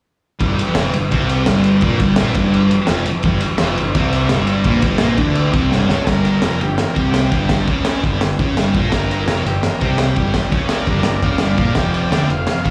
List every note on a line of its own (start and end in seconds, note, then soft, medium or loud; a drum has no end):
0.40 0.57 G1 loud
0.40 0.55 G2 medium
0.40 0.57 G3 loud
0.40 kick loud
0.40 ride medium
0.56 muted distorted electric guitar stroke medium
0.56 muted picked electric bass stroke soft
0.56 ride medium
0.75 0.91 F1 loud
0.75 0.93 F2 medium
0.75 0.93 F3 loud
0.75 snare loud
0.75 ride loud
0.93 1.10 G1 medium
0.93 1.07 G2 medium
0.93 ride medium
1.11 1.44 C2 loud
1.11 1.46 C3 loud
1.11 1.46 C4 loud
1.11 kick loud
1.11 ride loud
1.29 ride medium
1.46 1.80 G1 loud
1.46 1.82 G2 loud
1.46 1.82 G3 loud
1.46 snare loud
1.46 ride loud
1.64 ride medium
1.81 1.99 A#1 loud
1.81 1.99 A#2 loud
1.81 2.00 A#3 loud
1.81 kick loud
1.81 ride loud
2.00 2.17 G1 loud
2.00 2.17 G2 loud
2.00 2.17 G3 medium
2.00 kick loud
2.00 ride medium
2.16 2.34 A#1 loud
2.16 2.35 A#2 loud
2.16 2.36 A#3 medium
2.16 snare loud
2.16 ride loud
2.34 2.68 G1 loud
2.34 2.70 G2 loud
2.34 2.70 G3 loud
2.34 kick loud
2.34 ride medium
2.54 ride loud
2.71 muted distorted electric guitar stroke medium
2.71 muted picked electric bass stroke soft
2.71 ride medium
2.87 3.05 F1 loud
2.87 3.06 F2 loud
2.87 3.06 F3 loud
2.87 snare loud
2.87 ride medium
3.06 muted distorted electric guitar stroke medium
3.06 muted picked electric bass stroke soft
3.06 ride medium
3.23 3.41 G1 loud
3.23 3.41 G2 loud
3.23 3.42 G3 loud
3.23 kick loud
3.23 ride medium
3.40 muted distorted electric guitar stroke medium
3.40 muted picked electric bass stroke soft
3.40 ride medium
3.58 3.77 F1 loud
3.58 3.77 F2 medium
3.58 3.77 F3 loud
3.58 snare loud
3.58 ride loud
3.78 3.95 G1 medium
3.78 3.92 G2 medium
3.78 ride medium
3.95 4.28 C2 loud
3.95 4.30 C3 medium
3.95 4.30 C4 loud
3.95 kick loud
3.95 ride loud
4.12 ride medium
4.29 4.64 G1 loud
4.29 4.65 G2 loud
4.29 4.66 G3 loud
4.29 snare loud
4.29 ride loud
4.47 ride medium
4.64 4.82 A#1 loud
4.64 4.83 A#2 loud
4.64 4.83 A#3 loud
4.64 kick loud
4.64 ride loud
4.82 5.00 G1 loud
4.82 5.01 G2 medium
4.82 5.01 G3 loud
4.82 kick loud
4.82 ride medium
4.98 5.18 A#1 loud
4.98 5.16 A#2 medium
4.98 5.18 A#3 loud
4.98 snare loud
4.98 ride loud
5.17 5.51 D2 medium
5.17 5.51 D3 medium
5.17 5.53 D4 loud
5.17 kick loud
5.17 ride medium
5.35 ride loud
5.52 5.71 C2 medium
5.52 5.70 C3 loud
5.52 5.71 C4 loud
5.52 kick loud
5.52 ride medium
5.69 5.89 G1 loud
5.69 5.88 G2 medium
5.69 5.88 G3 loud
5.69 snare medium
5.87 6.07 C#2 loud
5.87 6.06 C#3 medium
5.87 6.06 C#4 loud
5.87 snare medium
6.04 6.40 G1 medium
6.04 6.42 G2 loud
6.04 6.42 G3 loud
6.04 6.06 A4 medium
6.04 6.59 A#4 loud
6.04 kick medium
6.04 snare loud
6.04 ride medium
6.25 ride medium
6.42 6.59 F1 medium
6.42 6.60 F2 medium
6.42 6.61 F3 medium
6.42 snare loud
6.42 ride loud
6.60 6.77 G1 medium
6.60 6.75 G2 medium
6.60 6.79 G4 medium
6.60 ride medium
6.78 6.97 A#4 medium
6.78 snare loud
6.78 ride medium
6.95 7.30 C2 medium
6.95 7.31 C3 medium
6.95 7.31 C4 medium
6.95 kick loud
6.95 ride medium
6.99 7.15 G4 medium
7.12 7.14 F#4 medium
7.12 snare loud
7.12 ride medium
7.16 7.50 G4 medium
7.31 7.65 G1 medium
7.31 7.67 G2 medium
7.31 7.67 G3 medium
7.31 kick loud
7.31 ride medium
7.49 kick loud
7.49 snare loud
7.49 ride medium
7.67 8.01 C#2 medium
7.67 8.03 C#3 medium
7.67 8.03 C#4 loud
7.67 kick loud
7.67 ride medium
7.85 snare loud
7.85 ride loud
8.03 8.20 G1 medium
8.03 8.21 G2 medium
8.03 8.21 G3 loud
8.03 kick loud
8.03 ride medium
8.21 8.37 G1 medium
8.21 8.36 G2 medium
8.21 snare loud
8.21 ride medium
8.39 8.54 C#2 medium
8.39 8.56 C#3 medium
8.39 8.57 C#4 medium
8.39 kick loud
8.39 ride medium
8.55 8.72 G1 medium
8.55 8.74 G2 medium
8.55 8.75 G3 loud
8.55 snare loud
8.55 ride medium
8.75 8.91 A#1 loud
8.75 8.92 A#2 medium
8.75 8.92 A#3 medium
8.75 kick loud
8.75 ride medium
8.89 9.25 G1 medium
8.89 9.26 G2 medium
8.89 9.27 G3 loud
8.89 8.92 A4 medium
8.89 kick medium
8.89 snare loud
8.89 ride medium
8.95 9.45 A#4 loud
9.11 ride medium
9.26 9.43 F1 medium
9.26 9.43 F2 medium
9.26 9.45 F3 medium
9.26 snare loud
9.26 ride loud
9.44 9.61 G1 medium
9.44 9.59 G2 medium
9.44 9.63 G4 medium
9.44 ride medium
9.63 9.82 A#4 medium
9.63 snare loud
9.63 ride medium
9.80 10.14 C2 loud
9.80 10.16 C3 medium
9.80 10.16 C4 loud
9.80 kick loud
9.80 ride medium
9.85 10.00 G4 medium
9.98 10.00 F#4 medium
9.98 10.35 G4 loud
9.98 snare loud
9.98 ride medium
10.16 10.50 G1 medium
10.16 10.51 G2 medium
10.16 10.52 G3 medium
10.16 kick loud
10.16 ride medium
10.34 kick medium
10.34 snare loud
10.34 ride medium
10.52 10.85 C#2 medium
10.52 10.87 C#3 medium
10.52 10.87 C#4 medium
10.52 kick loud
10.52 ride medium
10.67 10.70 C#5 medium
10.67 snare loud
10.67 ride loud
10.72 10.87 A#4 medium
10.72 10.88 D5 medium
10.87 11.04 G1 loud
10.87 11.03 G2 medium
10.87 11.05 G3 loud
10.87 11.05 A#4 medium
10.87 11.06 D5 medium
10.87 kick loud
10.87 ride medium
11.03 11.21 G1 medium
11.03 11.19 G2 medium
11.03 11.22 A#4 medium
11.03 11.22 D5 loud
11.03 snare loud
11.03 ride medium
11.23 11.39 C#2 loud
11.23 11.40 C#3 medium
11.23 11.40 C#4 loud
11.23 11.40 D5 medium
11.23 11.41 F5 medium
11.23 kick loud
11.23 ride medium
11.38 11.56 G1 medium
11.38 11.58 G2 medium
11.38 11.58 G3 loud
11.38 11.58 D5 medium
11.38 11.58 F5 medium
11.38 snare loud
11.38 ride medium
11.57 11.75 A#1 medium
11.57 11.75 A#2 medium
11.57 11.75 A#3 medium
11.57 11.75 D5 medium
11.57 11.76 F5 medium
11.57 kick loud
11.57 ride medium
11.74 12.09 F1 medium
11.74 12.10 F2 medium
11.74 12.10 F3 loud
11.74 11.93 D5 medium
11.74 11.94 G5 medium
11.74 kick medium
11.74 snare loud
11.74 ride medium
11.94 12.11 D5 medium
11.94 12.12 G5 medium
11.94 ride medium
12.09 12.27 D2 loud
12.09 12.28 D3 medium
12.09 12.28 D4 loud
12.09 12.28 D5 medium
12.09 12.30 G5 medium
12.09 snare loud
12.09 ride loud
12.28 12.45 F1 medium
12.28 12.44 F2 medium
12.28 12.70 F5 loud
12.28 ride medium
12.47 snare loud
12.47 ride medium
12.64 12.70 A1 loud
12.64 12.70 A2 medium
12.64 12.70 A3 medium
12.64 kick loud
12.64 ride medium